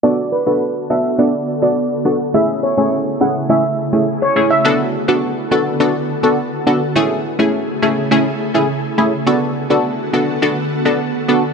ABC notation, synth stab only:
X:1
M:4/4
L:1/16
Q:1/4=104
K:Bdor
V:1 name="Synth stab"
[B,DFA]3 [B,DFA]3 [B,DFA]2 [B,DFA] z2 [B,DFA] z2 [B,DFA] z | [A,CEG]3 [A,CEG]3 [A,CEG]2 [A,CEG] z2 [A,CEG] z2 [A,CEG] z | [B,DFA]3 [B,DFA]3 [B,DFA]2 [B,DFA] z2 [B,DFA] z2 [B,DFA] z | [A,CEG]3 [A,CEG]3 [A,CEG]2 [A,CEG] z2 [A,CEG] z2 [A,CEG] z |
[B,DFA]3 [B,DFA]3 [B,DFA]2 [B,DFA] z2 [B,DFA] z2 [B,DFA] z |]